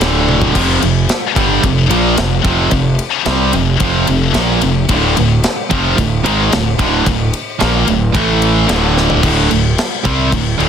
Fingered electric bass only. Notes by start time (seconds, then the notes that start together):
0.00 D1
0.55 F1
0.82 F1
1.36 G1
1.64 F1
1.91 A#1
2.18 F1
2.45 F1
2.72 F1
3.27 C2
3.54 F1
3.81 F1
4.09 F1
4.36 A#1
4.63 F1
4.90 D1
5.18 D1
5.71 F1
5.99 D1
6.27 G#1
6.80 D1
7.07 D1
7.62 A#1
7.89 D1
8.15 A1
8.69 D1
9.24 D1
9.52 D1
10.05 C2
10.59 D1